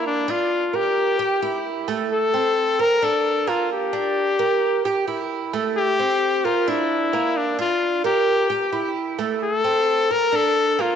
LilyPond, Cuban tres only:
\new Staff \with { instrumentName = "Cuban tres" } { \time 4/4 \key bes \lydian \tempo 4 = 131 bes8 d'4 bes'4 g'8 e'4 | a4 c'4 bes'8 d'4 bes8~ | bes8 d'4 bes'4 g'8 e'4 | a4 c'4 bes'8 d'4 bes8~ |
bes8 d'4 bes'4 g'8 e'4 | a4 c'4 bes'8 d'4 bes8 | }